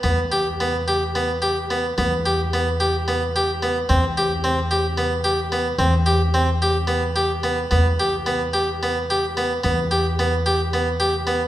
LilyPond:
<<
  \new Staff \with { instrumentName = "Harpsichord" } { \time 7/8 \key e \minor \tempo 4 = 110 b8 g'8 b8 g'8 b8 g'8 b8 | b8 g'8 b8 g'8 b8 g'8 b8 | c'8 g'8 c'8 g'8 b8 g'8 b8 | c'8 g'8 c'8 g'8 b8 g'8 b8 |
b8 g'8 b8 g'8 b8 g'8 b8 | b8 g'8 b8 g'8 b8 g'8 b8 | }
  \new Staff \with { instrumentName = "Upright bass" } { \clef bass \time 7/8 \key e \minor e,2.~ e,8 | e,2.~ e,8 | e,2.~ e,8 | e,2.~ e,8 |
e,2.~ e,8 | e,2.~ e,8 | }
>>